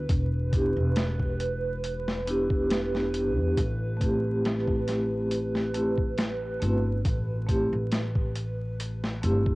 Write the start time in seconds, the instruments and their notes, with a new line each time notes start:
Already playing: ambient pad B4
0.09 upright bass E1, kick, closed hi-hat
0.51 vibraphone B3 D4 E4, kick, closed hi-hat
0.56 vibraphone G4
0.77 upright bass E1
0.96 snare, closed hi-hat
1.20 kick
1.40 closed hi-hat
1.84 closed hi-hat
2.08 snare
2.26 vibraphone B3 D4 E4 G4, closed hi-hat
2.50 kick
2.70 snare, closed hi-hat
2.93 vibraphone B3 D4 E4, snare
2.97 vibraphone G4
3.14 closed hi-hat
3.37 upright bass E2
3.57 upright bass A1, kick, closed hi-hat
3.97 vibraphone A3 C4
4.01 vibraphone E4 G4, kick, closed hi-hat
4.45 snare, closed hi-hat
4.68 kick
4.88 snare, closed hi-hat
5.31 closed hi-hat
5.55 snare
5.74 vibraphone A3 C4 E4 G4, closed hi-hat
5.98 kick
6.18 snare, closed hi-hat
6.60 upright bass G1, vibraphone A3 C4 E4, closed hi-hat
6.65 vibraphone F#4
7.05 upright bass A1, kick, closed hi-hat
7.47 vibraphone A3 C4 E4 G4, kick, closed hi-hat
7.73 upright bass A1
7.92 snare, closed hi-hat
8.15 kick
8.36 closed hi-hat
8.80 closed hi-hat
9.04 snare
9.22 upright bass G1, vibraphone A3 C4 E4 G4, closed hi-hat
9.46 kick